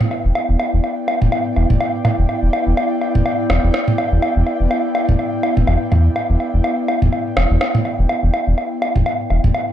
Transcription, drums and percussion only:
0.01 mid tom medium
0.11 low woodblock soft
0.35 low woodblock medium
0.60 low woodblock medium
0.84 low woodblock soft
1.08 low woodblock medium
1.22 mid tom medium
1.32 low woodblock medium
1.56 low woodblock soft
1.70 mid tom medium
1.81 low woodblock medium
2.05 mid tom medium
2.05 low woodblock medium
2.29 low woodblock soft
2.53 low woodblock medium
2.77 low woodblock medium
3.01 low woodblock soft
3.15 mid tom medium
3.26 low woodblock medium
3.50 cross-stick medium
3.50 low woodblock medium
3.74 cross-stick medium
3.74 low woodblock soft
3.88 mid tom medium
3.98 low woodblock medium
4.22 low woodblock medium
4.47 low woodblock soft
4.71 low woodblock medium
4.95 low woodblock medium
5.09 mid tom medium
5.19 low woodblock soft
5.43 low woodblock medium
5.57 mid tom medium
5.67 low woodblock medium
5.92 mid tom medium
5.92 low woodblock soft
6.16 low woodblock medium
6.40 low woodblock soft
6.64 low woodblock medium
6.88 low woodblock medium
7.02 mid tom medium
7.13 low woodblock soft
7.37 cross-stick medium
7.37 low woodblock medium
7.61 cross-stick medium
7.61 low woodblock medium
7.75 mid tom medium
7.85 low woodblock soft
8.09 low woodblock medium
8.34 low woodblock medium
8.58 low woodblock soft
8.82 low woodblock medium
8.96 mid tom medium
9.06 low woodblock medium
9.30 low woodblock soft
9.44 mid tom medium
9.54 low woodblock medium

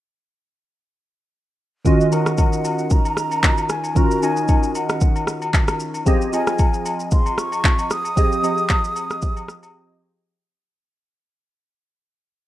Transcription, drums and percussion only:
1.85 kick loud
1.85 shaker medium
2.01 shaker medium
2.12 high agogo medium
2.12 shaker medium
2.26 cross-stick medium
2.26 shaker medium
2.38 kick loud
2.38 high agogo medium
2.38 shaker medium
2.53 shaker medium
2.65 high agogo medium
2.65 shaker medium
2.79 shaker soft
2.90 kick loud
2.90 shaker medium
3.05 high agogo medium
3.05 shaker soft
3.17 cross-stick medium
3.17 shaker medium
3.31 high agogo medium
3.31 shaker medium
3.43 kick medium
3.43 clap medium
3.43 low woodblock medium
3.43 shaker medium
3.58 high agogo medium
3.58 shaker medium
3.69 cross-stick medium
3.69 shaker medium
3.84 high agogo medium
3.84 shaker medium
3.96 kick loud
3.96 shaker medium
4.11 shaker medium
4.23 high agogo medium
4.23 shaker medium
4.37 shaker medium
4.48 kick loud
4.48 high agogo medium
4.48 shaker medium
4.63 shaker medium
4.75 high agogo medium
4.75 shaker medium
4.89 cross-stick medium
4.89 shaker soft
5.01 kick loud
5.01 shaker medium
5.16 high agogo medium
5.16 shaker soft
5.27 cross-stick medium
5.27 shaker medium
5.42 high agogo medium
5.42 shaker medium
5.54 kick medium
5.54 clap medium
5.54 low woodblock medium
5.54 shaker medium
5.68 cross-stick medium
5.68 high agogo medium
5.68 shaker medium
5.80 shaker medium
5.94 high agogo medium
5.94 shaker medium
6.06 kick loud
6.06 shaker medium
6.21 shaker medium
6.33 high agogo medium
6.33 shaker medium
6.47 cross-stick medium
6.47 shaker medium
6.58 kick loud
6.58 high agogo medium
6.58 shaker medium
6.74 shaker medium
6.86 high agogo medium
6.86 shaker medium
7.00 shaker medium
7.11 kick loud
7.11 shaker medium
7.26 high agogo medium
7.26 shaker soft
7.38 cross-stick medium
7.38 shaker medium
7.52 high agogo medium
7.52 shaker medium
7.64 kick medium
7.64 clap medium
7.64 low woodblock medium
7.64 shaker medium
7.79 high agogo medium
7.79 shaker medium
7.90 cross-stick medium
7.90 shaker medium
8.05 high agogo medium
8.05 shaker medium
8.17 kick loud
8.17 shaker medium
8.32 shaker medium
8.44 high agogo medium
8.44 shaker medium
8.58 shaker medium
8.69 kick loud
8.69 clap medium
8.69 high agogo medium
8.69 shaker medium
8.84 shaker medium
8.96 high agogo medium
8.96 shaker medium
9.10 cross-stick medium
9.10 shaker medium
9.22 kick loud
9.22 shaker medium
9.37 high agogo medium
9.37 shaker soft
9.48 cross-stick medium
9.48 shaker medium
9.63 high agogo medium
9.63 shaker medium

